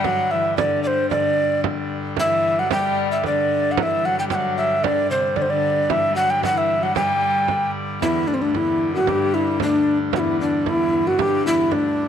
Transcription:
Already playing: G2 D3
0.04 F#3 F#5, frame drum
0.31 E3 E5, frame drum
0.57 D3 D5, frame drum
0.84 C5 D5, frame drum
1.11 D3 D5, frame drum
1.38 frame drum
1.64 frame drum
1.90 frame drum
2.17 E3 E5, frame drum
2.44 frame drum
2.59 F#3 F#5
2.71 G3 G5, frame drum
3.12 E5
3.24 D3 D5, frame drum
3.72 F#5
3.77 G2 D3 E3 F#5, frame drum
3.83 E5
4.04 F#3 F#5, frame drum
4.19 G3 G5
4.30 F#3 G5, frame drum
4.35 F#5
4.57 E5, frame drum
4.82 D3 D5, frame drum
5.10 C3 C5, frame drum
5.36 D3 D5, frame drum
5.42 C5
5.50 D3 D5
5.64 frame drum
5.89 E3 E5, frame drum
6.10 G3
6.15 F#3 F#5, frame drum
6.30 G5
6.41 F#3 F#5, frame drum
6.53 E3
6.58 E5
6.70 frame drum
6.81 F#3 F#5
6.93 G3 G5, frame drum
7.48 frame drum
8.00 E2 G2 D3 E4, frame drum
8.28 D2 D4, frame drum
8.34 C4
8.39 D2 D4
8.54 E2 E4, frame drum
8.81 frame drum
8.93 F#2 F#4
9.06 G2 G4, frame drum
9.34 E4, frame drum
9.58 D2, frame drum
9.62 D4
9.87 frame drum
10.13 E2 F#4, frame drum
10.19 E4
10.40 D4, frame drum
10.66 E2 E4, frame drum
10.92 frame drum
11.06 F#2 F#4
11.19 G2 G4, frame drum
11.46 E2 E4
11.72 D2 D4, frame drum

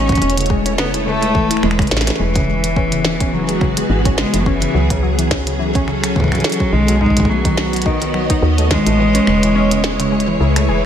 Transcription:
Already playing: A1 A3 B3 C#4 F#4 C#5 D#5
0.06 E3 E4, kick, closed hi-hat
0.12 kick, closed hi-hat
0.18 C#4, kick
0.22 E1, closed hi-hat
0.30 closed hi-hat
0.37 C#3, closed hi-hat
0.41 closed hi-hat
0.46 G#3 B4, closed hi-hat
0.50 kick
0.66 C#4, closed hi-hat
0.78 C#3 B3, snare
0.94 G#3, closed hi-hat
1.06 C#3 A3
1.22 G#3, closed hi-hat
1.35 E3, kick
1.51 E4, finger snap, closed hi-hat
1.57 finger snap
1.63 E1 E3 G#3, finger snap
1.71 finger snap
1.79 C#3, finger snap, kick, closed hi-hat
1.82 closed hi-hat
1.87 closed hi-hat
1.91 A1 E3 C#4, snare, closed hi-hat
1.97 snare, closed hi-hat
2.01 snare, closed hi-hat
2.07 C#4, snare, closed hi-hat
2.10 snare
2.16 snare
2.20 E1 E3 G#3
2.35 C#3, kick, closed hi-hat
2.42 B3
2.48 G#3
2.56 G#4
2.64 E3, closed hi-hat
2.76 C#4, kick
2.92 C#3 F#4, closed hi-hat
3.05 E3, snare
3.20 C#4, kick, closed hi-hat
3.33 C#3 F#3
3.49 G#3, closed hi-hat
3.61 C#3, finger snap, kick
3.77 G#3, closed hi-hat
3.90 G#1 E3
4.05 C#4, kick, closed hi-hat
4.18 C#3 G#3, snare
4.34 F#1 E3, closed hi-hat
4.40 F#3
4.46 E3 F#3 C#4, kick
4.62 C#3, closed hi-hat
4.74 C#2 F#3
4.90 C#3, kick, closed hi-hat
5.03 F#3
5.19 E3, closed hi-hat
5.24 C#4
5.31 C#4, kick, snare
5.47 C#3 A4, closed hi-hat
5.59 E3
5.75 C#4, kick, closed hi-hat
5.88 C#3, finger snap
6.03 F#3, finger snap, closed hi-hat
6.16 C#3 E3, kick
6.20 kick
6.24 kick
6.28 F#3, kick
6.32 finger snap, kick, closed hi-hat
6.35 kick, closed hi-hat
6.38 kick, closed hi-hat
6.41 E3 F#3, kick, snare, closed hi-hat
6.50 closed hi-hat
6.52 closed hi-hat
6.54 closed hi-hat
6.60 C#4, kick
6.73 B1 D#3 G#3 B3
6.88 F#3, closed hi-hat
7.01 G#3 D#4, kick
7.06 F#4, kick
7.10 kick
7.17 D#3, kick, closed hi-hat
7.20 kick
7.25 kick
7.29 F#3 A3
7.45 D#3, kick, closed hi-hat
7.57 A3, snare
7.73 F#3 C#5 D#5, closed hi-hat
7.76 closed hi-hat
7.82 closed hi-hat
7.86 D#3 D#4, kick
8.02 D#3, closed hi-hat
8.14 F#3, finger snap
8.30 D#4, kick, closed hi-hat
8.42 D#2 D#3
8.58 A3, closed hi-hat
8.71 D#3 G#3, kick, snare
8.86 A1 A3, closed hi-hat
8.99 E3 G#3
9.15 C#4, closed hi-hat
9.21 E4
9.27 E1 C#3, finger snap
9.43 E3, closed hi-hat
9.56 C#4
9.71 C#3, closed hi-hat
9.84 G#3, snare
10.00 C#3 B4, closed hi-hat
10.12 G#3
10.20 closed hi-hat
10.28 E3
10.40 C#2 C#3
10.56 A3, finger snap, closed hi-hat
10.69 E1 E3 G#4

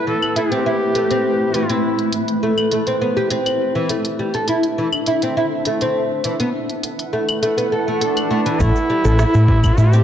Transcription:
Already playing: A3 E4 B4
0.07 E3 A4
0.22 claves
0.36 E4 G4, closed hi-hat
0.52 C4, closed hi-hat
0.66 E4
0.95 A3, closed hi-hat
1.11 C4, closed hi-hat
1.54 E3 E4, closed hi-hat
1.69 C4, closed hi-hat
1.99 closed hi-hat
2.12 closed hi-hat
2.28 closed hi-hat
2.43 A3
2.58 claves
2.71 A3, closed hi-hat
2.87 C4, closed hi-hat
3.01 B3
3.17 G4
3.30 C4, closed hi-hat
3.46 closed hi-hat, claves
3.75 E3
3.89 A3 D4 A4 E5, closed hi-hat
4.05 closed hi-hat
4.19 G3
4.34 A4, closed hi-hat
4.48 E4, closed hi-hat
4.63 closed hi-hat
4.78 E3
4.92 claves
5.06 E4, closed hi-hat
5.22 C4, closed hi-hat
5.37 E4
5.65 A3, closed hi-hat
5.81 C4, closed hi-hat
6.24 E3 E4 B4 F#5, closed hi-hat
6.40 B3, closed hi-hat
6.70 closed hi-hat
6.83 closed hi-hat
6.99 closed hi-hat
7.13 A3
7.29 closed hi-hat, claves
7.42 A3, closed hi-hat, swell
7.58 B3, closed hi-hat
7.72 A4
7.88 A3
8.01 D4 A4, closed hi-hat
8.17 closed hi-hat, claves
8.31 A3
8.46 E3, closed hi-hat
8.60 A1 A3 E4 G4 C5 A5, kick, cabasa
8.76 cabasa
8.90 G3
9.05 A1 A4, cabasa
9.19 E4, cross-stick, cabasa
9.34 A2, cabasa
9.48 E3, kick
9.64 kick, cabasa, claves
9.78 A2 E4 G4, cabasa
9.93 C4, cabasa

